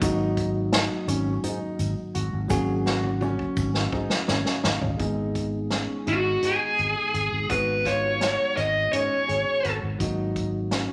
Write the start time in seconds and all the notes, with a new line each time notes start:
0.00 G#1 F#3 A#3 D#4 F#4, kick, closed hi-hat, shaker
0.37 kick, closed hi-hat
0.73 D#4, snare, closed hi-hat
1.08 G#1 C#4, closed hi-hat, shaker
1.44 G#2 D#4, closed hi-hat, shaker
1.79 G#1, closed hi-hat, shaker
2.15 G#1 F#4, closed hi-hat
2.33 G#1
2.48 G#1 F#3 A#3 C#4 F#4 G#4, kick, closed hi-hat, shaker
2.86 F#4, snare, shaker
3.04 high tom
3.21 C#4, high tom, shaker
3.39 kick
3.57 G#1, kick, shaker
3.74 snare
3.92 G#2 D#4, kick
4.10 snare
4.28 G#1 C#4 C#5, snare, shaker
4.46 snare
4.64 G#1 D#4 F5, snare
4.81 G#1, floor tom
4.97 G#1 G#3 B3 D#4 G#4, kick, closed hi-hat
5.35 kick, closed hi-hat
5.70 C#4, snare, closed hi-hat
6.06 G#1 D#4 F#4, closed hi-hat
6.43 G#2 D#4 G#4, closed hi-hat
6.78 G#1, closed hi-hat
7.14 G#1 G#4, closed hi-hat
7.32 G#1
7.49 G#1 G#3 B3 D#4 F#4 B4, kick, closed hi-hat
7.85 F4 C#5, kick, snare, closed hi-hat
8.21 F#4, snare, closed hi-hat
8.57 G#1 D#5, snare, closed hi-hat
8.93 G#2 C#4 C#5, closed hi-hat
9.28 G#1 G#4, closed hi-hat
9.64 G#1 F#4, closed hi-hat
9.83 G#1
9.99 G#1 F#3 A#3 D#4 F#4, kick, closed hi-hat
10.36 kick, closed hi-hat
10.71 C#4, snare, closed hi-hat